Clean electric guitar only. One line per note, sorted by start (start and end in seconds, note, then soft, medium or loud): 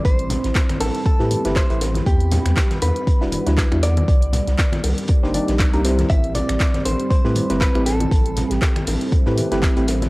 0.05 0.80 C5 loud
0.81 1.05 A4 loud
1.06 1.53 A4 loud
1.56 1.93 C5 loud
2.07 2.78 G4 loud
2.82 3.83 B4 loud
3.83 5.81 D5 medium
6.10 6.35 E5 loud
6.35 6.82 D5 loud
6.85 7.09 C5 medium
7.10 7.57 C5 loud
7.61 7.84 B4 medium
7.86 8.54 A4 medium
8.54 8.83 G4 medium